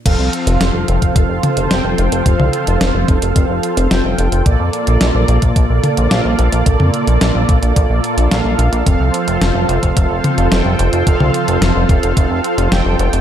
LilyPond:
<<
  \new Staff \with { instrumentName = "Analog synth pad" } { \time 4/4 \key f \major \tempo 4 = 109 << { <f c''>1~ | <f c''>1 | <bes d''>1~ | <bes d''>1 |
<f c''>1~ | <f c''>1 | } \\ { <f' a'>1~ | <f' a'>1 | <f' a'>1~ | <f' a'>1~ |
<f' a'>1~ | <f' a'>1 | } >> }
  \new Staff \with { instrumentName = "Analog polysynth" } { \time 4/4 \key f \major <f c' a' f''>2. <f c' a' g''>4 | <f c' a' f''>2. <f c' a' g''>4 | <bes, bes a' d''>2. <bes, bes a' f''>4 | <bes, bes a' d''>2. <bes, bes a' f''>4 |
<f c' a' f''>2. <f c' a' g''>4 | <f c' a' f''>2. <f c' a' g''>4 | }
  \new Staff \with { instrumentName = "Analog synth bass" } { \clef bass \time 4/4 \key f \major f,,16 c,16 r16 f,,16 f,,16 f,,16 f,,16 f,,16 f,,16 f,,16 r16 f,,16 f,,16 f,,16 f,,16 f,,16 | f,,16 c,16 r16 f,,16 f,,16 f,,16 f,,16 f,,16 f,,16 f,,16 r16 f,,16 f,,16 f,,16 f,,16 f,,16 | bes,,16 f,16 r16 bes,,16 bes,,16 bes,,16 bes,,16 bes,,16 bes,,16 bes,,16 r16 bes,,16 bes,,16 bes,,16 bes,,16 bes,,16 | bes,,16 f,16 r16 bes,,16 bes,,16 bes,,16 bes,,16 bes,,16 bes,,16 bes,,16 r16 bes,,16 bes,,16 bes,,16 bes,,16 bes,,16 |
f,,16 c,16 r16 f,,16 f,,16 f,,16 f,,16 f,,16 f,,16 f,,16 r16 f,,16 f,,16 f,,16 f,,16 f,,16 | f,,16 c,16 r16 f,,16 f,,16 f,,16 f,,16 f,,16 f,,16 f,,16 r16 f,,16 f,,16 f,,16 f,,16 f,,16 | }
  \new DrumStaff \with { instrumentName = "Drums" } \drummode { \time 4/4 <cymc hh bd>8 hh16 hh16 <hh sn>8 hh16 <hh bd>16 <hh bd>8 <hh toml>16 hh16 <hh sn>8 hh16 hh16 | <hh bd>16 toml16 hh16 hh16 <hh sn>8 <hh bd>16 hh16 <hh bd>8 hh16 hh16 <hh sn>8 hh16 hh16 | <hh bd>8 hh16 hh16 <hh sn>8 hh16 <hh bd>16 <hh bd>8 <hh toml>16 hh16 <hh sn>8 hh16 hh16 | <hh bd>16 toml16 hh16 hh16 <hh sn>8 <hh bd>16 hh16 <hh bd>8 hh16 hh16 <hh sn>8 hh16 hh16 |
<hh bd>8 hh16 hh16 <hh sn>8 hh16 <hh bd>16 <hh bd>8 <hh toml>16 hh16 <hh sn>8 hh16 hh16 | <hh bd>16 toml16 hh16 hh16 <hh sn>8 <hh bd>16 hh16 <hh bd>8 hh16 hh16 <hh sn>8 hh16 hh16 | }
>>